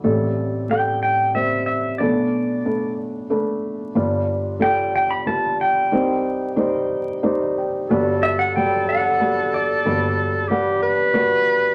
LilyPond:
<<
  \new Staff \with { instrumentName = "Pedal steel guitar" } { \time 3/4 \key g \major \tempo 4 = 92 r4 g''8 g''8 e''8 e''8 | d''4. r4. | r4 g''8 g''16 b''16 a''8 g''8~ | g''2 r4 |
r8 e''16 fis''16 g''8 fis''4 d''8~ | d''8 r2 r8 | }
  \new Staff \with { instrumentName = "Clarinet" } { \time 3/4 \key g \major r2. | r2. | r2. | r2. |
a'2.~ | a'4 g'8 b'4. | }
  \new Staff \with { instrumentName = "Felt piano" } { \time 3/4 \key g \major << { r2. | r2. | r2. | r2 d''16 ees''16 g''8 |
r2. | r2. | } \\ { <g c' a'>4 <g c' a'>4 <g c' c''>4 | <a d' b'>4 <a d' b'>4 <a d' b'>4 | <g f' b'>4 <g f' a'>4 <g f' b'>4 | <g ees' c''>4 <g ees' c''>4 <g ees' c''>4 |
<g fis' b'>4 <fis g b'>4 <g fis' b'>4 | <g fis' b'>4 <g b' fis''>4 <g fis' b'>4 | } >> }
  \new Staff \with { instrumentName = "Felt piano" } { \clef bass \time 3/4 \key g \major <a,, a,>2. | <b,, b,>2. | <g,, g,>2. | <c, c>2. |
<g,, g,>2. | <g,, g,>2. | }
>>